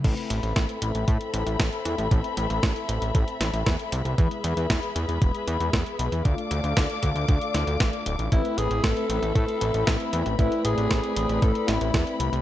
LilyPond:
<<
  \new Staff \with { instrumentName = "String section" } { \time 4/4 \key a \minor \tempo 4 = 116 << { <c' a' b''>1~ | <c' a' b''>1 | <gis' b' b''>1 | <a' d'' d'''>1 |
<a c' b''>1~ | <a c' b''>1 | } \\ { e''1~ | e''1~ | e''1 | f''1 |
e''1 | d''1 | } >> }
  \new Staff \with { instrumentName = "Alto saxophone" } { \time 4/4 \key a \minor r1 | r1 | r1 | r1 |
e'8 gis'8 a'4 a'4 e'8. r16 | e'8 gis'4. a'8 e'4 r8 | }
  \new Staff \with { instrumentName = "Analog polysynth" } { \time 4/4 \key a \minor <a c' e' b'>4. <a c' e' b'>2~ <a c' e' b'>8 | <a c' e' b'>4. r2 r8 | <gis b e' b'>4. r2 r8 | <a d' f'>4. <d' d''>2~ <d' d''>8 |
<a c' e' b'>4. <a c' e' b'>2~ <a c' e' b'>8 | <a c' e' b'>4. <a c' b'>2~ <a c' b'>8 | }
  \new Staff \with { instrumentName = "Analog synth bass" } { \clef bass \time 4/4 \key a \minor a,,16 r16 a,,16 a,,16 a,,16 r16 a,,16 a,,16 a,16 r16 a,,16 a,,16 a,,16 r16 e,16 a,,16 | a,,16 r16 a,,16 a,,16 a,,16 r16 a,,16 a,,16 a,,16 r16 a,,16 a,,16 e,16 r16 c,16 c,16 | e,16 r16 e,16 e,16 e,16 r16 e,16 e,16 e,,16 r16 e,16 e,16 e,16 r16 b,,16 e,16 | d,16 r16 d,16 d,16 d,16 r16 d,16 d,16 d,16 r16 d,16 d,16 a,,16 r16 d,,16 a,,16 |
a,,16 r16 a,,16 a,,16 a,,16 r16 a,,16 a,,16 a,16 r16 a,,16 a,,16 a,,16 r16 e,16 a,,16 | a,,16 r16 a,,16 a,,16 a,,16 r16 a,,16 a,,16 a,,16 r16 a,,16 a,,16 e,16 r16 c,16 c,16 | }
  \new DrumStaff \with { instrumentName = "Drums" } \drummode { \time 4/4 <cymc hh bd>16 hh16 hh16 hh16 <hh bd sn>16 hh16 hh16 hh16 <hh bd>16 hh16 hh16 hh16 <hh bd sn>16 hh16 hh16 hh16 | <hh bd>16 hh16 hh16 hh16 <hh bd sn>16 hh16 hh16 hh16 <hh bd>16 hh16 <hh sn>16 hh16 <hh bd sn>16 hh16 hh16 hh16 | <hh bd>16 hh16 hh16 hh16 <hh bd sn>16 hh16 hh16 hh16 <hh bd>16 hh16 hh16 hh16 <hh bd sn>16 hh16 hh16 hh16 | <hh bd>16 hh16 hh16 hh16 <hh bd sn>16 hh16 <hh bd>16 hh16 <hh bd>16 hh16 <hh sn>16 hh16 <hh bd sn>16 hh16 hh16 hh16 |
<hh bd>16 hh16 hh16 hh16 <hh bd sn>16 hh16 hh16 hh16 <hh bd>16 hh16 hh16 hh16 <hh bd sn>16 hh16 hh16 hh16 | <hh bd>16 hh16 hh16 hh16 <hh bd sn>16 hh16 hh16 hh16 <hh bd>16 hh16 <hh sn>16 hh16 <hh bd sn>16 hh16 hh16 hh16 | }
>>